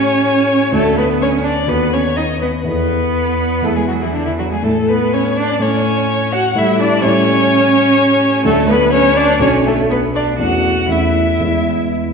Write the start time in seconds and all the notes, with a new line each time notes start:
Already playing: A2 C#4 E4 G4 A4 C#5
0.72 D2 A3 D4 F#4 A4
0.98 B3 B4
1.22 C#4 C#5
1.43 D4 D5
1.67 D#2 B3 F#4 A4 B4
1.93 C#4 C#5
2.17 D#4 D#5
2.41 B3 B4
2.64 E2 B3 E4 A4 B4
3.62 E2 A3 B3 E4 G#4 A4
3.76 G#3 G#4
3.88 F#3 F#4
4.02 E3 E4
4.14 D3 D4
4.26 E3 E4
4.38 F#3 F#4
4.50 G#3 G#4
4.63 A2 A3 E4 A4
4.88 B3 B4
5.13 C#4 C#5
5.37 D4 D5
5.59 A2 A3 C#4 E4 A4 C#5
6.33 F#4 F#5
6.55 A2 G3 E4 A4 E5
6.80 D4 D5
7.02 A2 G3 C#4 E4 A4 C#5
8.44 D2 F#3 A3 D4 F#4 A4
8.70 B3 B4
8.93 C#4 C#5
9.17 D4 D5
9.40 B1 F#3 C#4 D4 F#4 C#5
9.65 A3 A4
9.90 B3 B4
10.15 D4 D5
10.39 E2 A3 C#4 E4 F#4 F#5
10.88 E2 A3 C#4 E4 E5
11.40 E2 G#3 B3 E4